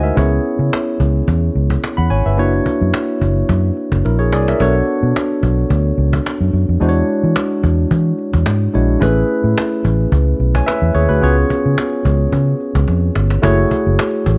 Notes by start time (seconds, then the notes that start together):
Already playing: D2 G#3 D#4 E4 F#4 C5 D#5 F#5 G#5
0.03 A#4 E5, cajon slap
0.15 C#2 B3 C#4 E4 G#4 C#5, cajon bass
0.45 cajon slap
0.59 C#3, cajon slap
0.73 cajon slap
0.88 cajon slap
1.00 C#2, cajon bass
1.15 cajon slap
1.28 E2, cajon bass
1.55 C#2, cajon slap
1.70 cajon bass
1.84 cajon slap
1.97 E2 F#5 B5, cajon slap
2.10 G#1 C#5 G#5, cajon slap
2.25 G1 B4 E5, cajon slap
2.37 F#1 A#3 D4 E4 F#4 C#5, cajon slap
2.53 cajon slap
2.66 cajon bass
2.81 F#2, cajon slap
2.94 cajon slap
3.21 F#1, cajon bass
3.49 F#2, cajon bass
3.64 cajon slap
3.77 cajon slap
3.92 F#1, cajon bass, cajon slap
4.05 A#1 E4 A#4, cajon slap
4.19 G#4 C#5
4.32 C2 G#4 D5, cajon slap
4.48 A#4 E5, cajon slap
4.60 B1 B3 D4 F#4 A4 C#5, cajon bass
4.88 cajon slap
5.03 B2, cajon slap
5.16 cajon slap
5.31 cajon slap
5.43 B1, cajon bass
5.58 cajon slap
5.70 D2, cajon bass
5.98 C#2, cajon slap
6.13 cajon bass
6.26 cajon slap
6.41 F#2, cajon slap
6.53 F#2, cajon slap
6.69 F2, cajon slap
6.80 E2 G#3 D4 E4 F#4 C5, cajon slap
6.89 C#5
7.08 cajon slap
7.23 E3, cajon slap
7.36 cajon slap
7.50 cajon slap
7.63 E2, cajon bass
7.78 cajon slap
7.91 E3, cajon bass
8.18 cajon slap
8.33 E2, cajon bass
8.46 G#2, cajon slap
8.61 cajon slap
8.74 A#1 G#3 D4 E4 F#4 C#5, cajon slap
8.89 cajon slap
9.00 A1 A3 C#4 E4 G#4 B4, cajon bass
9.30 cajon slap
9.44 A2, cajon slap
9.58 cajon slap
9.72 cajon slap
9.85 A1, cajon bass
10.00 cajon slap
10.12 C#2, cajon bass
10.39 B1, cajon slap
10.55 C#5 G#5, cajon bass
10.66 B4 E5, cajon slap
10.82 E2
10.95 D#2 G#4 C#5, cajon slap
11.09 D2 F#4 B4, cajon slap
11.21 C#2 B3 C#4 F4 G#4 C#5, cajon slap
11.38 cajon slap
11.50 cajon bass
11.66 C#3
11.78 cajon slap
12.05 C#2, cajon bass
12.32 C#3, cajon bass
12.47 cajon slap
12.60 cajon slap
12.75 C#2, cajon bass, cajon slap
12.88 F2, cajon slap
13.02 cajon slap
13.15 G1, cajon slap
13.30 cajon slap
13.42 F#1 A3 E4 F#4 G#4 C#5, cajon bass
13.71 cajon bass
13.87 F#1
13.99 cajon slap
14.26 A1, cajon bass